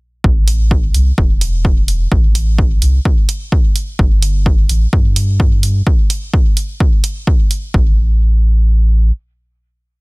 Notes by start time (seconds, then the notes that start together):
0.24 A1, kick
0.48 open hi-hat
0.71 kick
0.94 C2, open hi-hat
1.18 E1, kick
1.41 open hi-hat
1.65 kick
1.88 open hi-hat
2.12 A1, kick
2.35 open hi-hat
2.59 kick
2.82 C2, open hi-hat
3.05 kick
3.29 open hi-hat
3.52 kick
3.76 open hi-hat
3.99 G1, kick
4.22 open hi-hat
4.46 kick
4.69 A1, open hi-hat
4.93 G2, kick
5.16 open hi-hat
5.40 kick
5.63 open hi-hat
5.87 kick
6.10 open hi-hat
6.34 kick
6.57 open hi-hat
6.80 kick
7.04 open hi-hat
7.27 kick
7.51 open hi-hat
7.74 A1, kick